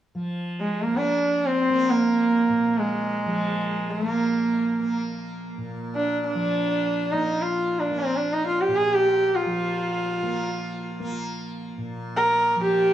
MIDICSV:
0, 0, Header, 1, 3, 480
1, 0, Start_track
1, 0, Tempo, 500000
1, 12418, End_track
2, 0, Start_track
2, 0, Title_t, "Sarangi"
2, 0, Program_c, 0, 110
2, 575, Note_on_c, 0, 56, 63
2, 787, Note_on_c, 0, 58, 66
2, 802, Note_off_c, 0, 56, 0
2, 922, Note_on_c, 0, 62, 76
2, 937, Note_off_c, 0, 58, 0
2, 1403, Note_on_c, 0, 60, 80
2, 1417, Note_off_c, 0, 62, 0
2, 1819, Note_on_c, 0, 58, 72
2, 1833, Note_off_c, 0, 60, 0
2, 2674, Note_on_c, 0, 56, 67
2, 2688, Note_off_c, 0, 58, 0
2, 3745, Note_on_c, 0, 57, 63
2, 3759, Note_off_c, 0, 56, 0
2, 3927, Note_off_c, 0, 57, 0
2, 3927, Note_on_c, 0, 58, 63
2, 4765, Note_off_c, 0, 58, 0
2, 5712, Note_on_c, 0, 62, 63
2, 5982, Note_off_c, 0, 62, 0
2, 6005, Note_on_c, 0, 62, 77
2, 6828, Note_on_c, 0, 63, 67
2, 6843, Note_off_c, 0, 62, 0
2, 7113, Note_on_c, 0, 65, 64
2, 7128, Note_off_c, 0, 63, 0
2, 7482, Note_on_c, 0, 62, 62
2, 7496, Note_off_c, 0, 65, 0
2, 7669, Note_on_c, 0, 60, 64
2, 7683, Note_off_c, 0, 62, 0
2, 7834, Note_on_c, 0, 62, 61
2, 7848, Note_off_c, 0, 60, 0
2, 7994, Note_on_c, 0, 63, 70
2, 8009, Note_off_c, 0, 62, 0
2, 8119, Note_off_c, 0, 63, 0
2, 8125, Note_on_c, 0, 65, 67
2, 8262, Note_on_c, 0, 67, 72
2, 8276, Note_off_c, 0, 65, 0
2, 8408, Note_on_c, 0, 68, 86
2, 8423, Note_off_c, 0, 67, 0
2, 8576, Note_on_c, 0, 67, 85
2, 8591, Note_off_c, 0, 68, 0
2, 8974, Note_on_c, 0, 65, 76
2, 8988, Note_off_c, 0, 67, 0
2, 10697, Note_off_c, 0, 65, 0
2, 11676, Note_on_c, 0, 70, 88
2, 12097, Note_off_c, 0, 70, 0
2, 12122, Note_on_c, 0, 67, 92
2, 12418, Note_off_c, 0, 67, 0
2, 12418, End_track
3, 0, Start_track
3, 0, Title_t, "Tanpura"
3, 0, Program_c, 1, 104
3, 142, Note_on_c, 1, 53, 52
3, 899, Note_on_c, 1, 58, 44
3, 1630, Note_off_c, 1, 58, 0
3, 1630, Note_on_c, 1, 58, 52
3, 2390, Note_on_c, 1, 46, 44
3, 3123, Note_off_c, 1, 53, 0
3, 3127, Note_on_c, 1, 53, 50
3, 3863, Note_off_c, 1, 58, 0
3, 3863, Note_on_c, 1, 58, 45
3, 4598, Note_off_c, 1, 58, 0
3, 4598, Note_on_c, 1, 58, 46
3, 5350, Note_off_c, 1, 46, 0
3, 5354, Note_on_c, 1, 46, 49
3, 6089, Note_off_c, 1, 53, 0
3, 6092, Note_on_c, 1, 53, 50
3, 6847, Note_off_c, 1, 58, 0
3, 6847, Note_on_c, 1, 58, 50
3, 7591, Note_off_c, 1, 58, 0
3, 7591, Note_on_c, 1, 58, 52
3, 8329, Note_off_c, 1, 46, 0
3, 8333, Note_on_c, 1, 46, 51
3, 9076, Note_off_c, 1, 53, 0
3, 9080, Note_on_c, 1, 53, 48
3, 9819, Note_off_c, 1, 58, 0
3, 9819, Note_on_c, 1, 58, 51
3, 10558, Note_off_c, 1, 58, 0
3, 10558, Note_on_c, 1, 58, 57
3, 11303, Note_off_c, 1, 46, 0
3, 11307, Note_on_c, 1, 46, 47
3, 12050, Note_off_c, 1, 53, 0
3, 12054, Note_on_c, 1, 53, 54
3, 12418, Note_off_c, 1, 46, 0
3, 12418, Note_off_c, 1, 53, 0
3, 12418, Note_off_c, 1, 58, 0
3, 12418, End_track
0, 0, End_of_file